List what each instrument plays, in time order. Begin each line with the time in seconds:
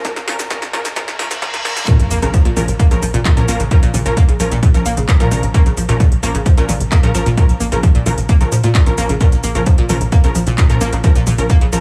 Already playing: riser
0.05 synth arpeggio sound A#2, synth stab F3 C#4 A#4, kick, snare, closed hi-hat, mid tom, shaker
0.16 snare, closed hi-hat, shaker
0.28 synth arpeggio sound A#2, synth stab F3 C#4 A#4, snare, open hi-hat
0.39 snare, closed hi-hat, shaker
0.50 synth arpeggio sound A#2, synth stab F3 C#4 A#4, kick, snare, closed hi-hat, shaker
0.62 snare, closed hi-hat, shaker
0.73 synth arpeggio sound A#2, synth stab F3 C#4 A#4, snare, open hi-hat, mid tom
0.85 snare, closed hi-hat, shaker
0.96 synth arpeggio sound A#2, synth stab F3 C#4 A#4, kick, snare, closed hi-hat, reverse cymbal, shaker
1.08 snare, closed hi-hat, shaker
1.19 synth arpeggio sound A#2, synth stab F3 C#4 A#4, snare, open hi-hat
1.31 snare, closed hi-hat, shaker
1.42 synth arpeggio sound A#2, synth stab F3 C#4 A#4, kick, snare, closed hi-hat, mid tom, shaker
1.54 snare, closed hi-hat, shaker
1.65 synth arpeggio sound A#2, synth stab F3 C#4 A#4, snare, open hi-hat
1.77 snare, closed hi-hat, shaker
1.88 synth arpeggio sound A#2, synth stab F3 C#4 A#4, kick, closed hi-hat, mid tom, sub drop, shaker
2.00 analog synth bass A#1, closed hi-hat, shaker
2.11 analog synth bass A#1, synth arpeggio sound A#3, open hi-hat, shaker
2.22 analog synth bass A#1, synth arpeggio sound C#3, synth stab F3 C#4 A#4, closed hi-hat, shaker
2.34 synth arpeggio sound F3, kick, closed hi-hat, shaker
2.45 analog synth bass A#1, synth arpeggio sound A#2, closed hi-hat
2.56 analog synth bass A#1, synth arpeggio sound A#2, synth stab F3 C#4 A#4, open hi-hat, mid tom, shaker
2.68 analog synth bass A#1, closed hi-hat, shaker
2.79 synth arpeggio sound A#3, kick, closed hi-hat, shaker
2.91 analog synth bass A#1, synth arpeggio sound C#3, synth stab F3 C#4 A#4, closed hi-hat, shaker
3.02 analog synth bass A#1, synth arpeggio sound F3, open hi-hat, shaker
3.14 analog synth bass A#1, synth arpeggio sound A#2, closed hi-hat, shaker
3.25 synth arpeggio sound A#2, kick, clap, closed hi-hat, mid tom, shaker
3.37 analog synth bass A#2, synth stab F3 C#4 A#4, closed hi-hat, shaker
3.48 analog synth bass A#1, synth stab F3 C#4 A#4, synth arpeggio sound A#3, open hi-hat, shaker
3.60 analog synth bass A#1, synth arpeggio sound C#3, closed hi-hat, shaker
3.71 synth stab F3 C#4 A#4, synth arpeggio sound F3, kick, closed hi-hat, shaker
3.83 analog synth bass A#1, synth arpeggio sound A#2, closed hi-hat, shaker
3.94 analog synth bass A#1, synth arpeggio sound A#2, open hi-hat, mid tom, shaker
4.06 analog synth bass A#1, synth stab F3 C#4 A#4, closed hi-hat, shaker
4.17 synth arpeggio sound A#3, kick, closed hi-hat, shaker
4.28 analog synth bass A#1, synth arpeggio sound C#3, closed hi-hat
4.40 analog synth bass A#1, synth stab F3 C#4 A#4, synth arpeggio sound F3, open hi-hat, shaker
4.51 analog synth bass A#1, synth arpeggio sound A#2, closed hi-hat, shaker
4.63 synth arpeggio sound A#2, kick, closed hi-hat, mid tom, shaker
4.74 analog synth bass A#1, synth stab F3 C#4 A#4, closed hi-hat, shaker
4.86 analog synth bass A#1, synth arpeggio sound A#3, open hi-hat, shaker
4.97 analog synth bass A#1, synth arpeggio sound C#3, closed hi-hat, shaker
5.09 synth arpeggio sound F3, kick, clap, closed hi-hat, shaker
5.20 synth arpeggio sound A#2, analog synth bass A#2, synth stab F3 C#4 A#4, closed hi-hat, shaker
5.31 analog synth bass A#1, synth arpeggio sound A#2, synth stab F3 C#4 A#4, open hi-hat, mid tom, shaker
5.43 analog synth bass A#1, closed hi-hat, shaker
5.54 synth stab F3 C#4 A#4, synth arpeggio sound A#3, kick, closed hi-hat, shaker
5.66 analog synth bass A#1, synth arpeggio sound C#3, closed hi-hat, shaker
5.77 analog synth bass A#1, synth arpeggio sound F3, open hi-hat, shaker
5.89 analog synth bass A#1, synth arpeggio sound A#2, synth stab F3 C#4 A#4, closed hi-hat, shaker
6.00 synth arpeggio sound A#2, kick, closed hi-hat, mid tom, shaker
6.12 analog synth bass A#1, closed hi-hat
6.23 analog synth bass A#1, synth stab F3 C#4 A#4, synth arpeggio sound A#3, open hi-hat, shaker
6.35 analog synth bass A#1, synth arpeggio sound C#3, closed hi-hat, shaker
6.46 synth arpeggio sound F3, kick, closed hi-hat, shaker
6.57 analog synth bass A#1, synth arpeggio sound A#2, synth stab F3 C#4 A#4, closed hi-hat, shaker
6.69 analog synth bass A#1, synth arpeggio sound A#2, open hi-hat, mid tom, shaker
6.80 analog synth bass A#1, closed hi-hat, shaker
6.92 synth arpeggio sound A#3, kick, clap, closed hi-hat, shaker
7.03 analog synth bass A#2, synth arpeggio sound C#3, synth stab F3 C#4 A#4, closed hi-hat, shaker
7.15 analog synth bass A#1, synth arpeggio sound F3, synth stab F3 C#4 A#4, open hi-hat, shaker
7.26 analog synth bass A#1, synth arpeggio sound A#2, closed hi-hat, shaker
7.37 synth arpeggio sound A#2, synth stab F3 C#4 A#4, kick, closed hi-hat, mid tom, shaker
7.49 analog synth bass A#1, closed hi-hat, shaker
7.60 analog synth bass A#1, synth arpeggio sound A#3, open hi-hat, shaker
7.72 analog synth bass A#1, synth arpeggio sound C#3, synth stab F3 C#4 A#4, closed hi-hat, shaker
7.83 synth arpeggio sound F3, kick, closed hi-hat, shaker
7.95 analog synth bass A#1, synth arpeggio sound A#2, closed hi-hat
8.06 analog synth bass A#1, synth arpeggio sound A#2, synth stab F3 C#4 A#4, open hi-hat, mid tom, shaker
8.18 analog synth bass A#1, closed hi-hat, shaker
8.29 synth arpeggio sound A#3, kick, closed hi-hat, shaker
8.41 analog synth bass A#1, synth arpeggio sound C#3, synth stab F3 C#4 A#4, closed hi-hat, shaker
8.52 analog synth bass A#2, synth arpeggio sound F3, open hi-hat, shaker
8.64 synth arpeggio sound A#2, analog synth bass A#2, closed hi-hat, shaker
8.75 synth arpeggio sound A#2, kick, clap, closed hi-hat, mid tom, shaker
8.86 analog synth bass A#1, synth stab F3 C#4 A#4, closed hi-hat, shaker
8.98 analog synth bass A#1, synth stab F3 C#4 A#4, synth arpeggio sound A#3, open hi-hat, shaker
9.09 analog synth bass A#1, synth arpeggio sound C#3, closed hi-hat, shaker
9.21 synth arpeggio sound A#2, synth stab F3 C#4 A#4, kick, closed hi-hat, mid tom, shaker
9.32 analog synth bass A#1, closed hi-hat, shaker
9.44 analog synth bass A#1, synth arpeggio sound A#3, open hi-hat, shaker
9.55 analog synth bass A#1, synth arpeggio sound C#3, synth stab F3 C#4 A#4, closed hi-hat, shaker
9.66 synth arpeggio sound F3, kick, closed hi-hat, shaker
9.78 analog synth bass A#1, synth arpeggio sound A#2, closed hi-hat
9.89 analog synth bass A#1, synth arpeggio sound A#2, synth stab F3 C#4 A#4, open hi-hat, mid tom, shaker
10.01 analog synth bass A#1, closed hi-hat, shaker
10.12 synth arpeggio sound A#3, kick, closed hi-hat, shaker
10.24 analog synth bass A#1, synth arpeggio sound C#3, synth stab F3 C#4 A#4, closed hi-hat, shaker
10.35 analog synth bass A#1, synth arpeggio sound F3, open hi-hat, shaker
10.47 analog synth bass A#1, synth arpeggio sound A#2, closed hi-hat, shaker
10.58 synth arpeggio sound A#2, kick, clap, closed hi-hat, mid tom, shaker
10.70 analog synth bass A#2, synth stab F3 C#4 A#4, closed hi-hat, shaker
10.81 analog synth bass A#1, synth stab F3 C#4 A#4, synth arpeggio sound A#3, open hi-hat, shaker
10.93 analog synth bass A#1, synth arpeggio sound C#3, closed hi-hat, shaker
11.04 synth stab F3 C#4 A#4, synth arpeggio sound F3, kick, closed hi-hat, shaker
11.15 analog synth bass A#1, synth arpeggio sound A#2, closed hi-hat, shaker
11.27 analog synth bass A#1, synth arpeggio sound A#2, open hi-hat, mid tom, shaker
11.38 analog synth bass A#1, synth stab F3 C#4 A#4, closed hi-hat, shaker
11.50 synth arpeggio sound A#3, kick, closed hi-hat, shaker
11.61 analog synth bass A#1, synth arpeggio sound C#3, closed hi-hat
11.73 analog synth bass A#1, synth arpeggio sound F3, synth stab F3 C#4 A#4, open hi-hat, shaker